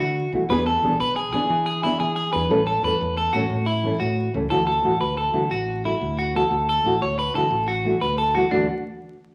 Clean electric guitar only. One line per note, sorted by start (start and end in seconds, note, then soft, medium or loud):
0.00 0.31 F#4 medium
0.50 0.65 B4 loud
0.66 0.98 A4 medium
1.00 1.16 B4 medium
1.16 1.31 G#4 medium
1.33 1.65 G#4 medium
1.66 1.82 G#4 medium
1.83 1.99 E4 medium
2.00 2.15 G#4 medium
2.16 2.32 G#4 medium
2.33 2.65 B4 medium
2.67 2.83 A4 medium
2.84 3.16 B4 medium
3.17 3.33 A4 medium
3.33 3.65 F#4 medium
3.66 3.98 E4 medium
4.00 4.32 F#4 medium
4.50 4.66 A4 medium
4.67 4.99 A4 medium
5.01 5.17 B4 medium
5.17 5.49 A4 medium
5.51 5.83 F#4 medium
5.85 6.17 E4 medium
6.18 6.34 F#4 medium
6.36 6.67 A4 medium
6.69 7.00 A4 medium
7.02 7.18 C#5 medium
7.19 7.34 B4 medium
7.35 7.67 A4 medium
7.68 8.00 F#4 medium
8.01 8.17 B4 medium
8.18 8.34 A4 medium
8.35 8.51 F#4 medium
8.51 8.67 D4 medium